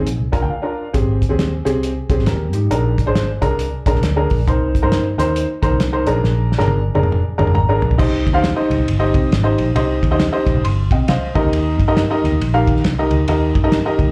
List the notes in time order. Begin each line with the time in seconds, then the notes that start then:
0.05 A#1, closed hi-hat
0.20 C2
0.32 D4 F4 A#4 G#5, kick, closed hi-hat
0.42 D2 G5
0.50 F5
0.62 D4 F4 A#4
0.93 G#1 C4 G4 G#4, kick, closed hi-hat
1.22 kick, closed hi-hat
1.29 D#2 C4 G4 G#4
1.39 snare, closed hi-hat
1.65 C2 C4 G4 G#4, snare, closed hi-hat
1.83 closed hi-hat
2.10 C2 C4 G4 G#4, kick, closed hi-hat
2.18 G#1, snare
2.26 D#2 G4 A#4, snare, closed hi-hat
2.53 G#2 D#4 G4, closed hi-hat
2.70 A#1 D4 G#4 A#4, closed hi-hat
2.98 kick, closed hi-hat
3.06 G#1 D4 G#4 C5
3.15 snare, closed hi-hat
3.41 C2 D4 G#4 A#4, kick, closed hi-hat
3.59 closed hi-hat
3.86 A#1 D4 G#4 A#4, kick, closed hi-hat
3.95 C2, snare
4.03 D2, snare, closed hi-hat
4.16 D4 G#4 A#4
4.30 A#1, kick, open hi-hat
4.47 C2 D#4 A#4 C5, kick, closed hi-hat
4.75 kick, closed hi-hat
4.82 G2 D#4 A#4 C5
4.92 snare, closed hi-hat
5.18 D#2 D#4 A#4 C5, snare, closed hi-hat
5.36 closed hi-hat
5.62 D#2 D#4 A#4 C5, kick, closed hi-hat
5.72 C2
5.80 snare, closed hi-hat
5.92 D#4 A#4 C5
6.07 A#1 D4 G#4 A#4, closed hi-hat
6.24 A#1, snare
6.52 snare
6.58 G1 D4 G#4 A#4, snare
6.68 high tom
6.95 F1 D4 G#4 A#4, high tom
7.03 mid tom
7.12 mid tom
7.38 G#1 D4 G#4 A#4, mid tom
7.47 G1, mid tom
7.54 G#1 A#5, mid tom
7.69 D4 G#4 A#4
7.82 A#1, floor tom
7.91 floor tom
7.98 C2 D#4 G4 C5 D#5, kick, crash
8.27 D#2, kick, ride
8.33 D#4 G4 C5 F5
8.44 snare, ride
8.56 D#4 G4 C5 D#5
8.70 C2, ride
8.79 C2
8.87 G1, ride
8.99 D#4 G4 C5 D#5
9.14 C3, kick, ride
9.31 G#1, snare, ride
9.43 D#4 G4 C5 D#5
9.58 A#1, ride
9.75 C2 D#4 G4 C5 D#5, ride
10.03 D#2, kick, ride
10.11 D#4 G4 C5 D#5
10.20 snare, ride
10.32 D#4 G4 C5 D#5
10.47 A#1, kick, snare, ride
10.55 C2
10.64 G1 C6, ride
10.91 C3 D#5 G5, kick, ride
11.08 C2 C5 D#5 F5, snare, ride
11.35 D#2 D#4 G4 A#4 D#5, kick, ride
11.44 D2
11.52 D#2, ride
11.80 G2, kick, ride
11.88 D#4 G4 A#4 D#5
11.97 snare, ride
12.10 D#4 G4 A#4 D#5
12.24 D#2, snare, ride
12.32 D#2
12.41 A#1, ride
12.54 D#4 G4 A#4 F5
12.67 D#3, kick, ride
12.76 snare
12.84 C2, snare, ride
12.99 D#4 G4 A#4 D#5
13.11 D2, ride
13.28 D#2 D#4 G4 A#4 D#5, ride
13.55 G2, kick, ride
13.64 D#4 G4 A#4 D#5
13.72 snare, ride
13.85 D#4 G4 A#4 D#5
13.99 D2, kick, ride
14.08 D#2